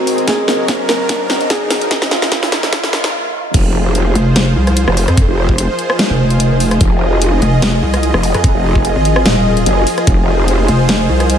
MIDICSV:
0, 0, Header, 1, 8, 480
1, 0, Start_track
1, 0, Tempo, 408163
1, 326, Time_signature, 4, 2, 24, 8
1, 13386, End_track
2, 0, Start_track
2, 0, Title_t, "Ambient pad"
2, 0, Program_c, 0, 92
2, 0, Note_on_c, 0, 44, 76
2, 0, Note_on_c, 0, 60, 79
2, 0, Note_on_c, 0, 70, 79
2, 0, Note_on_c, 0, 72, 73
2, 0, Note_on_c, 0, 75, 88
2, 323, Note_on_c, 0, 54, 80
2, 325, Note_off_c, 0, 44, 0
2, 2244, Note_off_c, 0, 54, 0
2, 2244, Note_on_c, 0, 58, 86
2, 2246, Note_off_c, 0, 72, 0
2, 2419, Note_on_c, 0, 63, 90
2, 2687, Note_on_c, 0, 68, 81
2, 3016, Note_off_c, 0, 75, 0
2, 3017, Note_off_c, 0, 60, 0
2, 3017, Note_off_c, 0, 70, 0
2, 3685, Note_off_c, 0, 58, 0
2, 3685, Note_off_c, 0, 63, 0
2, 3685, Note_off_c, 0, 68, 0
2, 4165, Note_on_c, 0, 65, 81
2, 4304, Note_on_c, 0, 75, 85
2, 4443, Note_on_c, 0, 70, 95
2, 4659, Note_on_c, 0, 80, 72
2, 13386, Note_off_c, 0, 65, 0
2, 13386, Note_off_c, 0, 70, 0
2, 13386, Note_off_c, 0, 75, 0
2, 13386, Note_off_c, 0, 80, 0
2, 13386, End_track
3, 0, Start_track
3, 0, Title_t, "Felt piano"
3, 0, Program_c, 1, 0
3, 0, Note_on_c, 1, 66, 87
3, 135, Note_off_c, 1, 66, 0
3, 325, Note_on_c, 1, 68, 96
3, 956, Note_off_c, 1, 68, 0
3, 1044, Note_on_c, 1, 70, 96
3, 1676, Note_off_c, 1, 70, 0
3, 1765, Note_on_c, 1, 68, 91
3, 2396, Note_off_c, 1, 68, 0
3, 2485, Note_on_c, 1, 65, 98
3, 3116, Note_off_c, 1, 65, 0
3, 13386, End_track
4, 0, Start_track
4, 0, Title_t, "Supersaw synth"
4, 0, Program_c, 2, 81
4, 0, Note_on_c, 2, 44, 81
4, 0, Note_on_c, 2, 51, 74
4, 0, Note_on_c, 2, 60, 72
4, 0, Note_on_c, 2, 68, 89
4, 287, Note_off_c, 2, 60, 0
4, 287, Note_off_c, 2, 68, 0
4, 306, Note_off_c, 2, 44, 0
4, 306, Note_off_c, 2, 51, 0
4, 324, Note_on_c, 2, 49, 73
4, 324, Note_on_c, 2, 54, 73
4, 324, Note_on_c, 2, 70, 90
4, 325, Note_on_c, 2, 42, 79
4, 2226, Note_off_c, 2, 42, 0
4, 2226, Note_off_c, 2, 54, 0
4, 2245, Note_on_c, 2, 46, 79
4, 2245, Note_on_c, 2, 53, 73
4, 3651, Note_off_c, 2, 49, 0
4, 3651, Note_off_c, 2, 70, 0
4, 3671, Note_off_c, 2, 46, 0
4, 3671, Note_off_c, 2, 53, 0
4, 4164, Note_on_c, 2, 53, 82
4, 4164, Note_on_c, 2, 68, 72
4, 4165, Note_on_c, 2, 65, 75
4, 4165, Note_on_c, 2, 72, 87
4, 7992, Note_off_c, 2, 72, 0
4, 8005, Note_on_c, 2, 75, 88
4, 11832, Note_off_c, 2, 75, 0
4, 11846, Note_on_c, 2, 72, 90
4, 13386, Note_off_c, 2, 53, 0
4, 13386, Note_off_c, 2, 65, 0
4, 13386, Note_off_c, 2, 68, 0
4, 13386, Note_off_c, 2, 72, 0
4, 13386, End_track
5, 0, Start_track
5, 0, Title_t, "Wobble bass"
5, 0, Program_c, 3, 39
5, 4886, Note_on_c, 3, 29, 96
5, 5348, Note_off_c, 3, 29, 0
5, 5366, Note_on_c, 3, 36, 97
5, 5714, Note_off_c, 3, 36, 0
5, 5974, Note_on_c, 3, 41, 96
5, 6193, Note_off_c, 3, 41, 0
5, 7174, Note_on_c, 3, 29, 98
5, 7988, Note_off_c, 3, 29, 0
5, 8725, Note_on_c, 3, 29, 96
5, 9188, Note_off_c, 3, 29, 0
5, 9206, Note_on_c, 3, 36, 95
5, 9554, Note_off_c, 3, 36, 0
5, 9815, Note_on_c, 3, 41, 96
5, 10034, Note_off_c, 3, 41, 0
5, 10535, Note_on_c, 3, 32, 99
5, 10868, Note_off_c, 3, 32, 0
5, 10886, Note_on_c, 3, 27, 99
5, 11348, Note_off_c, 3, 27, 0
5, 12567, Note_on_c, 3, 29, 97
5, 13028, Note_off_c, 3, 29, 0
5, 13046, Note_on_c, 3, 36, 96
5, 13386, Note_off_c, 3, 36, 0
5, 13386, End_track
6, 0, Start_track
6, 0, Title_t, "Wobble bass"
6, 0, Program_c, 4, 39
6, 4166, Note_on_c, 4, 29, 98
6, 4868, Note_off_c, 4, 29, 0
6, 5734, Note_on_c, 4, 29, 93
6, 5954, Note_off_c, 4, 29, 0
6, 6214, Note_on_c, 4, 29, 101
6, 6673, Note_off_c, 4, 29, 0
6, 8006, Note_on_c, 4, 29, 99
6, 8708, Note_off_c, 4, 29, 0
6, 9573, Note_on_c, 4, 29, 99
6, 9793, Note_off_c, 4, 29, 0
6, 10053, Note_on_c, 4, 29, 100
6, 10513, Note_off_c, 4, 29, 0
6, 11366, Note_on_c, 4, 30, 103
6, 11588, Note_off_c, 4, 30, 0
6, 11846, Note_on_c, 4, 29, 98
6, 12548, Note_off_c, 4, 29, 0
6, 13386, End_track
7, 0, Start_track
7, 0, Title_t, "Riser"
7, 0, Program_c, 5, 103
7, 0, Note_on_c, 5, 60, 74
7, 3685, Note_off_c, 5, 60, 0
7, 13386, End_track
8, 0, Start_track
8, 0, Title_t, "Drums"
8, 84, Note_on_c, 9, 46, 91
8, 202, Note_off_c, 9, 46, 0
8, 213, Note_on_c, 9, 42, 51
8, 324, Note_off_c, 9, 42, 0
8, 324, Note_on_c, 9, 38, 74
8, 324, Note_on_c, 9, 42, 77
8, 325, Note_on_c, 9, 36, 99
8, 442, Note_off_c, 9, 38, 0
8, 442, Note_off_c, 9, 42, 0
8, 443, Note_off_c, 9, 36, 0
8, 564, Note_on_c, 9, 38, 74
8, 681, Note_off_c, 9, 38, 0
8, 804, Note_on_c, 9, 38, 77
8, 804, Note_on_c, 9, 42, 78
8, 805, Note_on_c, 9, 36, 99
8, 922, Note_off_c, 9, 38, 0
8, 922, Note_off_c, 9, 42, 0
8, 923, Note_off_c, 9, 36, 0
8, 1045, Note_on_c, 9, 38, 81
8, 1045, Note_on_c, 9, 42, 52
8, 1162, Note_off_c, 9, 38, 0
8, 1162, Note_off_c, 9, 42, 0
8, 1285, Note_on_c, 9, 38, 81
8, 1285, Note_on_c, 9, 42, 78
8, 1286, Note_on_c, 9, 36, 102
8, 1402, Note_off_c, 9, 38, 0
8, 1402, Note_off_c, 9, 42, 0
8, 1403, Note_off_c, 9, 36, 0
8, 1525, Note_on_c, 9, 38, 81
8, 1643, Note_off_c, 9, 38, 0
8, 1654, Note_on_c, 9, 42, 52
8, 1765, Note_off_c, 9, 42, 0
8, 1765, Note_on_c, 9, 36, 94
8, 1765, Note_on_c, 9, 38, 90
8, 1765, Note_on_c, 9, 42, 80
8, 1883, Note_off_c, 9, 36, 0
8, 1883, Note_off_c, 9, 38, 0
8, 1883, Note_off_c, 9, 42, 0
8, 2005, Note_on_c, 9, 38, 92
8, 2005, Note_on_c, 9, 46, 97
8, 2122, Note_off_c, 9, 38, 0
8, 2122, Note_off_c, 9, 46, 0
8, 2134, Note_on_c, 9, 42, 53
8, 2245, Note_off_c, 9, 42, 0
8, 2245, Note_on_c, 9, 36, 97
8, 2245, Note_on_c, 9, 38, 92
8, 2245, Note_on_c, 9, 42, 82
8, 2363, Note_off_c, 9, 36, 0
8, 2363, Note_off_c, 9, 38, 0
8, 2363, Note_off_c, 9, 42, 0
8, 2374, Note_on_c, 9, 38, 85
8, 2485, Note_off_c, 9, 38, 0
8, 2485, Note_on_c, 9, 38, 95
8, 2603, Note_off_c, 9, 38, 0
8, 2614, Note_on_c, 9, 38, 87
8, 2725, Note_off_c, 9, 38, 0
8, 2725, Note_on_c, 9, 36, 100
8, 2725, Note_on_c, 9, 38, 97
8, 2725, Note_on_c, 9, 42, 80
8, 2843, Note_off_c, 9, 36, 0
8, 2843, Note_off_c, 9, 38, 0
8, 2843, Note_off_c, 9, 42, 0
8, 2854, Note_on_c, 9, 38, 83
8, 2966, Note_off_c, 9, 38, 0
8, 2966, Note_on_c, 9, 38, 102
8, 2966, Note_on_c, 9, 42, 54
8, 3083, Note_off_c, 9, 38, 0
8, 3083, Note_off_c, 9, 42, 0
8, 3095, Note_on_c, 9, 38, 89
8, 3205, Note_off_c, 9, 38, 0
8, 3205, Note_on_c, 9, 38, 101
8, 3205, Note_on_c, 9, 42, 81
8, 3206, Note_on_c, 9, 36, 104
8, 3323, Note_off_c, 9, 36, 0
8, 3323, Note_off_c, 9, 38, 0
8, 3323, Note_off_c, 9, 42, 0
8, 3334, Note_on_c, 9, 38, 92
8, 3446, Note_off_c, 9, 38, 0
8, 3446, Note_on_c, 9, 38, 106
8, 3564, Note_off_c, 9, 38, 0
8, 3575, Note_on_c, 9, 38, 91
8, 3575, Note_on_c, 9, 42, 54
8, 3692, Note_off_c, 9, 38, 0
8, 3692, Note_off_c, 9, 42, 0
8, 4166, Note_on_c, 9, 36, 117
8, 4166, Note_on_c, 9, 42, 83
8, 4166, Note_on_c, 9, 49, 102
8, 4283, Note_off_c, 9, 36, 0
8, 4283, Note_off_c, 9, 42, 0
8, 4283, Note_off_c, 9, 49, 0
8, 4646, Note_on_c, 9, 42, 83
8, 4764, Note_off_c, 9, 42, 0
8, 4886, Note_on_c, 9, 42, 56
8, 5003, Note_off_c, 9, 42, 0
8, 5125, Note_on_c, 9, 38, 120
8, 5125, Note_on_c, 9, 42, 82
8, 5243, Note_off_c, 9, 38, 0
8, 5243, Note_off_c, 9, 42, 0
8, 5494, Note_on_c, 9, 37, 51
8, 5494, Note_on_c, 9, 42, 55
8, 5606, Note_off_c, 9, 42, 0
8, 5606, Note_on_c, 9, 42, 85
8, 5612, Note_off_c, 9, 37, 0
8, 5723, Note_off_c, 9, 42, 0
8, 5734, Note_on_c, 9, 37, 77
8, 5845, Note_on_c, 9, 46, 97
8, 5852, Note_off_c, 9, 37, 0
8, 5963, Note_off_c, 9, 46, 0
8, 5974, Note_on_c, 9, 37, 51
8, 5974, Note_on_c, 9, 42, 57
8, 6085, Note_off_c, 9, 42, 0
8, 6085, Note_on_c, 9, 42, 83
8, 6086, Note_on_c, 9, 36, 124
8, 6092, Note_off_c, 9, 37, 0
8, 6203, Note_off_c, 9, 42, 0
8, 6204, Note_off_c, 9, 36, 0
8, 6455, Note_on_c, 9, 36, 61
8, 6566, Note_on_c, 9, 42, 86
8, 6572, Note_off_c, 9, 36, 0
8, 6684, Note_off_c, 9, 42, 0
8, 6806, Note_on_c, 9, 42, 55
8, 6923, Note_off_c, 9, 42, 0
8, 6935, Note_on_c, 9, 37, 78
8, 7046, Note_on_c, 9, 38, 124
8, 7046, Note_on_c, 9, 42, 84
8, 7052, Note_off_c, 9, 37, 0
8, 7163, Note_off_c, 9, 38, 0
8, 7163, Note_off_c, 9, 42, 0
8, 7414, Note_on_c, 9, 42, 55
8, 7526, Note_off_c, 9, 42, 0
8, 7526, Note_on_c, 9, 42, 84
8, 7643, Note_off_c, 9, 42, 0
8, 7765, Note_on_c, 9, 46, 95
8, 7883, Note_off_c, 9, 46, 0
8, 7894, Note_on_c, 9, 37, 52
8, 7894, Note_on_c, 9, 42, 57
8, 8005, Note_off_c, 9, 42, 0
8, 8005, Note_on_c, 9, 42, 82
8, 8006, Note_on_c, 9, 36, 126
8, 8012, Note_off_c, 9, 37, 0
8, 8123, Note_off_c, 9, 42, 0
8, 8124, Note_off_c, 9, 36, 0
8, 8486, Note_on_c, 9, 42, 80
8, 8603, Note_off_c, 9, 42, 0
8, 8726, Note_on_c, 9, 42, 55
8, 8844, Note_off_c, 9, 42, 0
8, 8965, Note_on_c, 9, 38, 123
8, 8965, Note_on_c, 9, 42, 82
8, 9083, Note_off_c, 9, 38, 0
8, 9083, Note_off_c, 9, 42, 0
8, 9334, Note_on_c, 9, 37, 53
8, 9334, Note_on_c, 9, 42, 55
8, 9445, Note_off_c, 9, 42, 0
8, 9445, Note_on_c, 9, 42, 81
8, 9451, Note_off_c, 9, 37, 0
8, 9562, Note_off_c, 9, 42, 0
8, 9573, Note_on_c, 9, 37, 79
8, 9684, Note_on_c, 9, 46, 91
8, 9691, Note_off_c, 9, 37, 0
8, 9802, Note_off_c, 9, 46, 0
8, 9813, Note_on_c, 9, 37, 52
8, 9813, Note_on_c, 9, 42, 54
8, 9925, Note_off_c, 9, 42, 0
8, 9925, Note_on_c, 9, 42, 77
8, 9926, Note_on_c, 9, 36, 122
8, 9931, Note_off_c, 9, 37, 0
8, 10042, Note_off_c, 9, 42, 0
8, 10044, Note_off_c, 9, 36, 0
8, 10295, Note_on_c, 9, 36, 63
8, 10405, Note_on_c, 9, 42, 78
8, 10412, Note_off_c, 9, 36, 0
8, 10522, Note_off_c, 9, 42, 0
8, 10645, Note_on_c, 9, 42, 53
8, 10763, Note_off_c, 9, 42, 0
8, 10773, Note_on_c, 9, 37, 82
8, 10884, Note_on_c, 9, 38, 120
8, 10884, Note_on_c, 9, 42, 79
8, 10891, Note_off_c, 9, 37, 0
8, 11002, Note_off_c, 9, 38, 0
8, 11002, Note_off_c, 9, 42, 0
8, 11253, Note_on_c, 9, 42, 51
8, 11364, Note_off_c, 9, 42, 0
8, 11364, Note_on_c, 9, 42, 79
8, 11482, Note_off_c, 9, 42, 0
8, 11604, Note_on_c, 9, 46, 90
8, 11722, Note_off_c, 9, 46, 0
8, 11733, Note_on_c, 9, 37, 55
8, 11733, Note_on_c, 9, 42, 53
8, 11845, Note_off_c, 9, 42, 0
8, 11845, Note_on_c, 9, 42, 79
8, 11846, Note_on_c, 9, 36, 118
8, 11851, Note_off_c, 9, 37, 0
8, 11962, Note_off_c, 9, 42, 0
8, 11964, Note_off_c, 9, 36, 0
8, 12325, Note_on_c, 9, 42, 76
8, 12442, Note_off_c, 9, 42, 0
8, 12565, Note_on_c, 9, 42, 50
8, 12682, Note_off_c, 9, 42, 0
8, 12805, Note_on_c, 9, 38, 122
8, 12805, Note_on_c, 9, 42, 77
8, 12922, Note_off_c, 9, 38, 0
8, 12922, Note_off_c, 9, 42, 0
8, 13174, Note_on_c, 9, 37, 57
8, 13174, Note_on_c, 9, 42, 51
8, 13284, Note_off_c, 9, 42, 0
8, 13284, Note_on_c, 9, 42, 78
8, 13292, Note_off_c, 9, 37, 0
8, 13386, Note_off_c, 9, 42, 0
8, 13386, End_track
0, 0, End_of_file